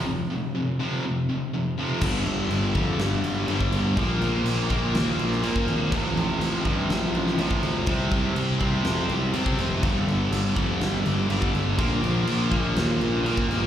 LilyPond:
<<
  \new Staff \with { instrumentName = "Distorted electric guitar" } { \clef bass \time 4/4 \key g \minor \tempo 4 = 123 <f, c>8 <f, c>8 <f, c>8 <f, c f>8 <f, c>8 <f, c>8 <f, c>8 <f, c f>8 | <g, d g>4. <g, d g>4. <g, d g>4 | <bes, f bes>4. <bes, f bes>4. <bes, f bes>4 | <f, c f>4. <f, c f>4. <f, c f>4 |
<c g c'>4. <c g c'>4. <c g c'>4 | <g, d g>4. <g, d g>4. <g, d g>4 | <bes, f bes>4. <bes, f bes>4. <bes, f bes>4 | }
  \new Staff \with { instrumentName = "Picked electric bass" } { \clef bass \time 4/4 \key g \minor r1 | g,,8 g,,8 g,,8 f,8 g,,8 g,,8 g,,8 g,,8 | bes,,8 bes,,8 bes,,4 ees,8 bes,,8 bes,8 aes,,8 | a,,8 a,,8 a,,8 g,8 a,,8 a,,8 a,,8 d,8 |
c,8 c,8 c,4 f,8 c,8 c8 f,,8 | g,,8 g,,8 g,,8 f,8 g,,8 g,,8 g,,8 g,,8 | bes,,8 bes,,8 bes,,4 ees,8 bes,,8 bes,8 g,,8 | }
  \new DrumStaff \with { instrumentName = "Drums" } \drummode { \time 4/4 r4 r4 r4 r4 | <cymc bd>8 cymc8 cymc8 <cymc bd>8 <cymc sn>8 cymc8 cymc16 bd16 cymc8 | <cymc bd>8 cymc8 cymc8 <cymc bd>8 <cymc sn>8 cymc16 sn16 cymc16 bd16 cymc8 | <cymc bd>8 cymc8 cymc8 <cymc bd>8 <cymc sn>8 cymc16 sn16 cymc16 bd16 cymc8 |
<cymc bd>8 <cymc bd>8 cymc8 <cymc bd>8 <cymc sn>8 cymc8 cymc16 bd16 cymc8 | <cymc bd>8 cymc8 cymc8 <cymc bd>8 <cymc sn>8 cymc8 cymc16 bd16 cymc8 | <cymc bd>8 cymc8 cymc8 <cymc bd>8 <cymc sn>8 cymc8 cymc16 bd16 cymc8 | }
>>